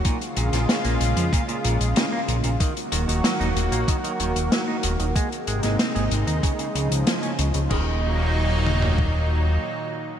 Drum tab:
CC |----------------|----------------|----------------|x---------------|
HH |xxxxxxxxxxxxx-xx|xxxxxxxxxxxxx-xx|xxxxxxxxxxxxxxxx|----------------|
SD |---oo-------o---|----o-------o---|---oo-------o---|----------------|
T2 |----------------|----------------|----------------|------o---------|
FT |----------------|----------------|----------------|-------o--------|
BD |o-------o-------|o-------o-------|o-------o-------|o-------o-------|